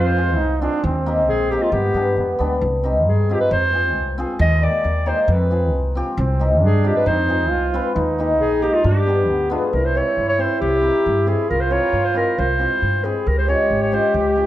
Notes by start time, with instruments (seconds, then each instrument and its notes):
Already playing: upright bass F2, trombone F4, clarinet B4
0.03 clarinet C5
0.17 hammered dulcimer C4 F4 G#4
0.38 upright bass C2, trombone D#4
0.61 hammered dulcimer C4 F4 G#4, trombone D4
0.84 upright bass D#2, trombone C4
1.06 hammered dulcimer A#3 D#4 G4
1.28 upright bass A#1, clarinet G#4
1.50 hammered dulcimer A#3 D#4 G4, clarinet G4
1.62 clarinet F4
1.72 upright bass G2, trombone B3, clarinet G4
1.94 upright bass G2, hammered dulcimer B3 D4 G4
2.17 upright bass F2, trombone B3
2.39 upright bass D2, hammered dulcimer B3 D4 G4
2.61 upright bass C2
2.83 hammered dulcimer C4 D#4 G4
3.06 upright bass G2, clarinet G#4
3.29 hammered dulcimer C4 D#4 F4, clarinet G4
3.40 clarinet B4
3.51 upright bass F2, clarinet C5
3.73 hammered dulcimer C4 F4 G#4
3.95 upright bass C2
4.18 hammered dulcimer C4 F4 G#4
4.39 upright bass D#2, clarinet D#5
4.61 hammered dulcimer A#3 D#4 G4, clarinet D5
4.84 upright bass D#2
5.06 hammered dulcimer A#3 D#4 G4, clarinet C5
5.21 clarinet C5
5.28 upright bass F2, clarinet B4
5.51 hammered dulcimer C4 F4 G#4
5.73 upright bass C2
5.95 hammered dulcimer C4 F4 G4
6.18 upright bass C2, trombone C4
6.39 hammered dulcimer C4 D#4 G4
6.62 upright bass G2, trombone D4, clarinet G#4
6.84 hammered dulcimer C4 D#4 F4, clarinet G4
6.96 clarinet B4
7.06 upright bass F2, trombone D#4, clarinet C5
7.28 hammered dulcimer C4 F4 G#4
7.50 upright bass C2, trombone F4
7.74 hammered dulcimer C4 F4 B4
7.96 upright bass D#2, trombone D#4
8.19 hammered dulcimer A#3 D#4 G4
8.40 upright bass A#1, clarinet G#4
8.62 hammered dulcimer A#3 D#4 A#4, clarinet G4
8.73 clarinet F4
8.84 upright bass G2, trombone D4, clarinet G4
9.07 hammered dulcimer B3 D4 G4
9.28 upright bass D2, trombone B3
9.50 hammered dulcimer B3 D4 F4, clarinet G#4
9.73 upright bass C2, trombone E4, clarinet A#4
9.85 clarinet C5
9.95 hammered dulcimer C4 E4 G4, clarinet C#5
10.17 upright bass G2
10.29 clarinet C#5
10.38 hammered dulcimer C4 E4 G4, clarinet C5
10.61 upright bass C2, clarinet G4
10.81 hammered dulcimer C4 E4 A#4
11.06 upright bass G2
11.26 hammered dulcimer C4 E4 G4, clarinet G#4
11.50 upright bass C2, trombone F4, clarinet A#4
11.60 clarinet C5
11.71 hammered dulcimer C4 E4 A#4, clarinet C#5
11.93 upright bass G2
12.04 clarinet C5
12.14 hammered dulcimer C4 E4 G4, clarinet A#4
12.38 upright bass C2, clarinet C5
12.59 hammered dulcimer C4 E4 G4
12.82 upright bass G2
13.04 hammered dulcimer C4 E4 G4, clarinet G#4
13.26 upright bass C#2, trombone G4, clarinet A#4
13.38 clarinet C5
13.48 hammered dulcimer G#3 C#4 F4, clarinet C#5
13.70 upright bass G#1
13.82 clarinet C#5
13.92 hammered dulcimer G#3 C#4 F4, clarinet C5
14.14 upright bass C#2, clarinet G4
14.36 hammered dulcimer G#3 C#4 F4